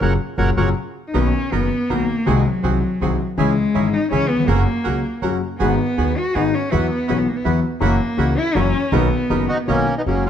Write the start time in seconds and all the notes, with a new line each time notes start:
0.00 F#1 A#2 C#3 F#3 A#3 C#4 F#4 A#4 C#5 F#5
0.38 F#1 A#2 C#3 F#3 A#3 C#4 F#4 A#4 C#5 F#5
0.57 F#1 A#2 C#3 F#3 A#3 C#4 F#4 A#4 C#5 F#5
1.08 D#4
1.13 B1 B2 D#3 A#3 B3 C#4 D#4 F#4 A#4
1.51 F#1 F#2 D#3 A#3 B3 D#4 F#4 A#4
1.89 B1 B2 D#3 A#3 B3 D#4 F#4 A#4
2.26 C2 C3 D#3 G#3 C4 F#4 G#4
2.47 F#3
2.62 C2 C3 D#3 G#3 C4 F#4 G#4
3.01 C2 C3 D#3 G#3 C4 F#4 G#4
3.37 C#2 C#3 E3 G#3 C#4 E4 G#4
3.74 G#1 G#2 E3 G#3 C#4 E4 G#4
3.93 D#4
4.11 C#2 C#3 E3 G#3 C#4 E4 G#4
4.29 B3
4.35 D#2
4.40 E2
4.45 F#1 F2 F#2 C#3 F#3 A#3 C#4 F#4 A#4
4.49 F#4
4.83 C#2 C#3 F#3 A#3 C#4 F#4 A#4
5.21 F#1 F#2 C#3 F#3 A#3 C#4 F#4 A#4
5.59 G#1 G#2 D#3 G#3 B3 F#4 G#4
5.97 D#1 D#2 D#3 G#3 B3 F#4 G#4
6.18 F#4
6.34 G#1 G#2 D#3 G#3 B3 D#4 F#4 G#4
6.54 C#4
6.71 E2 E3 F#3 B3 E4 F#4
7.07 B1 B2 E3 F#3 B3 C#4 E4 F#4
7.18 B3
7.28 A#3
7.36 B3
7.44 E2 E3 F#3 B3 E4 F#4
7.80 F#1 F#2 E3 F#3 A#3 C#4 E4 F#4
8.17 C#2 C#3 E3 A#3 C#4 E4 F#4
8.38 E4
8.55 F#1 F#2 E3 F#3 A#3 C#4 E4 F#4
8.92 B1 B2 D#3 A#3 B3 D#4 F#4 A#4
9.29 F#1 F#2 D#3 A#3 B3 D#4 F#4 A#4
9.49 D#4 F#4
9.67 B1 B2 D#3 A#3 B3 C#4 D#4 F#4 A#4
9.98 B3 D#4
10.04 F#1 F#2 C#3 F#3 G#3 A#3 C#4 F#4 G#4
10.26 C#4 F4